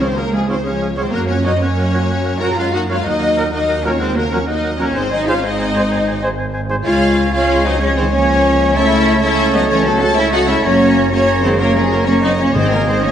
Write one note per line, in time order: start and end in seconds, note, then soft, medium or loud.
0.00 1.10 C#2 medium
0.00 0.18 D#3 medium
0.00 0.07 G#3 medium
0.00 0.18 C4 medium
0.00 0.08 G#4 medium
0.00 0.18 C5 medium
0.00 0.07 C#5 medium
0.00 0.08 F5 medium
0.16 0.25 C#3 medium
0.16 0.23 F#3 medium
0.16 0.34 A#3 medium
0.16 0.23 G#4 medium
0.16 0.34 A#4 medium
0.16 0.35 A#4 medium
0.16 0.25 F5 medium
0.33 0.41 C3 medium
0.33 0.49 F3 medium
0.33 0.50 G#3 medium
0.33 0.40 G#4 medium
0.33 0.50 G#4 medium
0.33 0.42 F5 medium
0.47 0.55 G#2 medium
0.47 0.57 D#3 medium
0.47 0.54 F3 medium
0.47 0.56 G#3 medium
0.47 0.56 C4 medium
0.47 0.55 G#4 medium
0.47 0.65 C5 medium
0.47 0.66 C5 medium
0.47 0.55 C#5 medium
0.47 0.57 F5 soft
0.64 0.96 G#3 medium
0.64 0.97 C#4 medium
0.64 0.71 G#4 medium
0.64 0.97 C#5 medium
0.64 0.98 C#5 medium
0.64 0.73 F5 soft
0.68 0.98 F3 medium
0.81 0.89 G#4 medium
0.81 0.89 F5 soft
0.97 1.05 G#2 medium
0.97 1.05 D#3 medium
0.97 1.06 F3 medium
0.97 1.13 G#3 medium
0.97 1.13 C4 medium
0.97 1.04 G#4 medium
0.97 1.03 C5 medium
0.97 1.14 C5 medium
0.97 1.05 C5 medium
0.97 1.03 C#5 medium
0.97 1.05 F5 soft
1.10 3.02 F#2 medium
1.10 1.29 C#3 medium
1.10 1.30 F#3 medium
1.10 1.29 A#3 medium
1.10 1.28 A#4 medium
1.10 1.21 A#4 medium
1.14 1.21 A#4 medium
1.14 1.22 A#4 medium
1.14 1.22 F#5 medium
1.27 1.46 F3 medium
1.27 1.46 A#3 medium
1.27 1.45 C#4 medium
1.27 1.37 A#4 medium
1.27 1.44 C#5 medium
1.27 1.46 C#5 medium
1.27 1.36 C#5 medium
1.27 1.38 F#5 medium
1.44 1.50 A#2 medium
1.44 1.50 F#3 medium
1.44 1.52 F#3 medium
1.44 1.62 C4 medium
1.44 1.61 D#4 medium
1.44 1.53 A#4 medium
1.44 1.51 C#5 medium
1.44 1.61 D#5 medium
1.44 1.62 D#5 medium
1.44 1.54 F#5 soft
1.60 2.40 F#3 medium
1.60 2.42 A#3 medium
1.60 2.41 C#4 medium
1.60 1.69 A#4 medium
1.60 2.40 C#5 medium
1.60 2.42 C#5 medium
1.60 1.70 F#5 medium
1.77 1.84 A#4 medium
1.77 1.85 F#5 soft
1.92 2.00 A#2 medium
1.92 2.00 F#3 medium
1.92 1.99 A#4 medium
1.92 1.99 C#5 medium
1.92 2.01 F#5 medium
2.09 2.17 A#4 medium
2.09 2.17 F#5 medium
2.25 2.32 A#4 medium
2.25 2.32 F#5 medium
2.40 2.50 F#3 medium
2.40 2.58 C#4 medium
2.40 2.57 F#4 medium
2.40 2.48 A#4 medium
2.40 2.58 A#4 medium
2.40 2.47 C#5 medium
2.40 2.49 F#5 medium
2.40 2.57 A#5 medium
2.40 2.58 A#5 medium
2.40 2.48 A#5 medium
2.45 2.51 A#2 medium
2.56 2.74 G#3 medium
2.56 2.73 C#4 medium
2.56 2.73 F4 medium
2.56 2.64 A#4 medium
2.56 2.73 F5 medium
2.56 2.74 F5 medium
2.56 2.65 F5 medium
2.56 2.66 F#5 medium
2.70 2.89 D#4 medium
2.70 2.90 F#4 medium
2.70 2.81 A#4 medium
2.70 2.88 F#5 medium
2.74 2.91 A#3 medium
2.74 2.90 F#5 medium
2.74 2.82 F#5 soft
2.74 2.82 F#5 medium
2.88 2.97 F#3 medium
2.88 3.05 G#3 medium
2.88 3.05 C#4 medium
2.88 3.05 F4 medium
2.88 2.96 A#4 medium
2.88 2.96 C#5 medium
2.88 2.94 F5 medium
2.88 3.06 F5 medium
2.88 3.07 F5 medium
2.88 2.98 F#5 medium
2.92 2.98 A#2 medium
3.03 4.96 D#2 medium
3.03 3.54 F#3 medium
3.03 3.52 A#3 medium
3.03 3.52 D#4 medium
3.03 3.11 A#4 medium
3.03 3.52 D#5 medium
3.03 3.51 D#5 medium
3.03 3.13 F#5 medium
3.08 3.53 D#5 medium
3.21 3.28 A#4 medium
3.21 3.30 F#5 medium
3.36 3.43 A#2 medium
3.36 3.43 F#3 medium
3.36 3.44 A#4 medium
3.36 3.46 F#5 medium
3.52 3.86 F#3 medium
3.52 3.82 A#3 medium
3.52 3.85 D#4 medium
3.52 3.60 A#4 medium
3.52 3.84 D#5 medium
3.52 3.85 D#5 medium
3.52 3.60 F#5 soft
3.68 3.76 A#4 medium
3.68 3.77 F#5 soft
3.84 3.90 A#2 medium
3.84 4.01 F3 medium
3.84 3.90 F#3 medium
3.84 4.00 A#3 medium
3.84 4.01 C#4 medium
3.84 3.92 A#4 medium
3.84 3.91 A#4 medium
3.84 4.00 C#5 medium
3.84 4.02 C#5 medium
3.84 4.01 C#5 medium
3.84 3.92 F#5 medium
3.99 4.17 D#3 medium
3.99 4.16 G#3 medium
3.99 4.16 C4 medium
3.99 4.07 A#4 medium
3.99 4.16 C5 medium
3.99 4.18 C5 medium
3.99 4.07 F#5 medium
4.04 4.18 C5 medium
4.14 4.33 C#3 medium
4.14 4.31 F#3 medium
4.14 4.33 A#3 medium
4.14 4.23 A#4 medium
4.14 4.32 A#4 medium
4.14 4.33 A#4 medium
4.14 4.24 F#5 medium
4.19 4.33 A#4 medium
4.31 4.38 A#2 medium
4.31 4.40 F3 medium
4.31 4.38 F#3 medium
4.31 4.38 A#3 medium
4.31 4.39 C#4 medium
4.31 4.38 A#4 medium
4.31 4.39 C#5 medium
4.31 4.49 C#5 medium
4.31 4.40 C#5 medium
4.31 4.40 F#5 medium
4.45 4.78 A#3 medium
4.45 4.80 D#4 medium
4.45 4.53 A#4 medium
4.45 4.80 D#5 medium
4.45 4.55 F#5 medium
4.49 4.80 F#3 medium
4.49 4.80 D#5 medium
4.63 4.71 A#4 medium
4.63 4.71 F#5 medium
4.78 4.85 A#2 medium
4.78 4.96 F3 medium
4.78 4.84 F#3 medium
4.78 4.95 A#3 medium
4.78 4.95 C#4 medium
4.78 4.87 A#4 medium
4.78 4.86 A#4 medium
4.78 4.96 C#5 medium
4.78 4.87 F#5 medium
4.94 6.83 G#1 medium
4.94 5.03 D#3 medium
4.94 5.11 G#3 medium
4.94 5.12 C4 medium
4.94 5.02 C5 medium
4.94 5.11 C5 medium
4.94 5.12 C5 medium
4.94 5.02 G#5 medium
5.09 5.26 F#3 medium
5.09 5.27 C4 medium
5.09 5.28 D#4 medium
5.09 5.18 C5 medium
5.09 5.28 D#5 medium
5.09 5.29 D#5 medium
5.09 5.19 G#5 medium
5.14 5.29 D#5 medium
5.25 5.31 G#2 medium
5.25 5.41 G#3 medium
5.25 5.32 G#3 medium
5.25 5.43 C#4 medium
5.25 5.44 F4 medium
5.25 5.34 C5 medium
5.25 5.44 F5 medium
5.29 5.36 G#5 medium
5.43 6.21 G#3 medium
5.43 6.23 C4 medium
5.43 6.23 D#4 medium
5.43 5.51 C5 medium
5.43 6.22 D#5 medium
5.43 6.25 D#5 medium
5.43 5.51 G#5 medium
5.59 5.67 C5 medium
5.59 5.66 G#5 medium
5.75 5.82 G#2 medium
5.75 5.82 G#3 medium
5.75 5.82 C5 medium
5.75 5.83 C5 medium
5.75 5.82 G#5 medium
5.91 5.98 C5 medium
5.91 5.98 G#5 medium
6.07 6.14 C5 medium
6.07 6.14 G#5 medium
6.21 6.28 G#2 medium
6.21 6.28 G#3 medium
6.21 6.30 C5 medium
6.21 6.29 C5 medium
6.21 6.30 G#5 medium
6.38 6.46 C5 medium
6.38 6.45 G#5 medium
6.54 6.62 C5 medium
6.54 6.61 G#5 medium
6.69 6.75 G#2 medium
6.69 6.75 G#3 medium
6.69 6.76 C5 medium
6.69 6.78 C5 medium
6.69 6.77 G#5 medium
6.83 10.61 C#2 medium
6.83 10.60 C#3 medium
6.83 8.71 G#3 medium
6.83 7.30 G#3 loud
6.83 7.31 C#4 medium
6.83 7.30 F4 loud
6.83 10.60 C#5 medium
6.83 7.21 C#5 medium
6.83 7.31 F5 medium
6.83 7.31 F5 loud
6.83 7.31 G#5 medium
7.32 7.65 G#3 medium
7.32 7.65 C#4 loud
7.32 7.64 F4 loud
7.32 7.80 C#5 medium
7.32 7.64 F5 medium
7.32 7.65 F5 medium
7.32 7.79 G#5 medium
7.65 7.74 F#3 medium
7.65 7.81 C4 medium
7.65 7.81 D#4 loud
7.65 7.71 D#5 medium
7.65 7.82 D#5 medium
7.79 7.98 F3 loud
7.79 7.96 G#3 medium
7.79 7.97 C#4 loud
7.79 7.85 C#5 medium
7.79 7.86 C#5 medium
7.79 8.74 C#5 medium
7.79 8.78 G#5 medium
7.83 7.98 C#5 medium
7.93 8.13 G#3 medium
7.93 8.12 C4 medium
7.93 7.99 C5 medium
7.93 8.12 C5 medium
7.99 8.06 D#3 medium
7.99 8.14 C5 medium
8.11 8.75 F3 medium
8.11 8.75 A#3 medium
8.11 8.75 C#4 loud
8.11 8.74 C#5 loud
8.11 8.76 C#5 loud
8.11 8.75 C#5 medium
8.75 10.61 A3 medium
8.75 9.23 A3 loud
8.75 9.23 C#4 loud
8.75 9.22 E4 loud
8.75 9.22 C#5 medium
8.75 9.22 E5 medium
8.75 9.21 E5 loud
8.75 9.20 E5 loud
8.75 9.22 A5 medium
9.21 9.54 A3 medium
9.21 9.55 C#4 loud
9.21 9.54 E4 loud
9.21 9.68 C#5 medium
9.21 9.53 E5 loud
9.21 9.54 E5 loud
9.21 9.54 E5 medium
9.21 9.69 A5 medium
9.53 9.71 F#3 medium
9.53 9.70 B3 loud
9.53 9.70 D#4 loud
9.53 9.69 D#5 medium
9.53 9.71 D#5 medium
9.68 9.85 E3 loud
9.68 9.85 A3 loud
9.68 9.86 C#4 loud
9.68 9.74 C#5 loud
9.68 10.16 C#5 medium
9.68 9.85 C#5 loud
9.68 9.86 C#5 medium
9.68 10.17 A5 medium
9.84 10.02 F#3 medium
9.84 10.01 A3 loud
9.84 10.00 A4 medium
9.84 10.02 A4 medium
9.88 10.03 C#3 medium
10.01 10.18 C#4 loud
10.01 10.17 F#4 loud
10.01 10.17 A4 loud
10.01 10.17 A5 loud
10.01 10.18 A5 loud
10.01 10.19 A5 loud
10.16 10.30 A3 loud
10.16 10.32 C#4 loud
10.16 10.33 E4 loud
10.16 10.63 C#5 medium
10.16 10.33 E5 loud
10.16 10.34 E5 loud
10.16 10.68 A5 medium
10.31 10.48 A3 loud
10.31 10.38 D#4 loud
10.31 10.48 F#4 loud
10.31 10.48 F#5 medium
10.31 10.49 F#5 loud
10.31 10.50 F#5 loud
10.46 10.64 G#3 medium
10.46 10.54 C#4 loud
10.46 10.64 E4 loud
10.46 10.63 E5 loud
10.46 10.65 E5 medium
10.50 10.65 E5 medium
10.62 12.52 F#1 medium
10.62 11.09 C#3 medium
10.62 11.10 F#3 loud
10.62 11.11 A#3 loud
10.62 11.09 A#3 medium
10.62 11.11 C#4 loud
10.62 11.10 C#5 loud
10.62 11.08 C#5 medium
10.62 11.11 C#5 medium
10.62 11.12 C#5 medium
10.66 11.12 C#5 loud
10.66 11.13 A#5 medium
11.11 11.57 C#3 medium
11.11 11.43 F#3 medium
11.11 11.43 A#3 loud
11.11 11.58 A#3 medium
11.11 11.43 C#4 loud
11.11 11.58 C#5 medium
11.11 11.43 C#5 loud
11.11 11.44 C#5 loud
11.11 11.59 C#5 medium
11.11 11.44 C#5 loud
11.11 11.59 A#5 medium
11.42 11.60 D#3 medium
11.42 11.60 G#3 loud
11.42 11.60 C4 loud
11.42 11.49 C5 medium
11.42 11.50 C5 medium
11.42 11.60 C5 medium
11.58 12.06 C#3 medium
11.58 11.75 C#3 medium
11.58 11.76 F#3 medium
11.58 11.75 A#3 loud
11.58 12.07 A#3 medium
11.58 11.76 A#4 loud
11.58 11.77 A#4 loud
11.58 12.07 C#5 medium
11.58 12.08 C#5 medium
11.58 12.07 A#5 medium
11.63 11.69 A#4 medium
11.74 11.91 C3 medium
11.74 11.91 F3 medium
11.74 11.92 G#3 loud
11.74 11.92 G#4 medium
11.74 11.93 G#4 medium
11.90 12.07 C#3 medium
11.90 11.98 F#3 medium
11.90 12.07 A#3 loud
11.90 12.08 A#4 medium
11.90 12.09 A#4 medium
11.95 12.09 A#4 medium
12.06 12.55 C#3 medium
12.06 12.14 F#3 medium
12.06 12.23 A#3 loud
12.06 12.55 A#3 medium
12.06 12.23 C#4 loud
12.06 12.13 C#5 medium
12.06 12.56 C#5 medium
12.06 12.58 C#5 medium
12.06 12.24 C#5 loud
12.06 12.42 A#5 medium
12.11 12.17 C#5 medium
12.22 12.39 F#3 medium
12.22 12.31 C4 medium
12.22 12.30 D#4 loud
12.22 12.39 D#5 medium
12.22 12.40 D#5 medium
12.22 12.41 D#5 medium
12.38 12.56 F3 medium
12.38 12.56 A#3 medium
12.38 12.56 C#4 medium
12.38 12.55 C#5 medium
12.38 12.47 C#5 medium
12.38 12.57 C#5 medium
12.53 13.12 G#1 medium
12.53 13.12 G#2 medium
12.53 13.01 G#2 medium
12.53 12.61 D#3 medium
12.53 13.12 G#3 medium
12.53 12.72 G#3 medium
12.53 12.72 C4 loud
12.53 12.71 C5 medium
12.53 12.72 C5 medium
12.53 12.72 C5 loud
12.53 13.12 D#5 medium
12.53 13.12 G#5 medium
12.70 12.87 C#3 medium
12.70 12.88 F#3 medium
12.70 12.88 A#3 loud
12.70 12.88 A#4 medium
12.74 12.89 A#4 medium
12.87 13.04 D#3 medium
12.87 13.04 G#3 medium
12.87 13.05 C4 loud
12.87 13.03 C5 medium
12.87 13.04 C5 medium
13.03 13.12 F3 medium
13.03 13.12 A#3 medium
13.03 13.12 C#4 medium
13.03 13.12 C#5 medium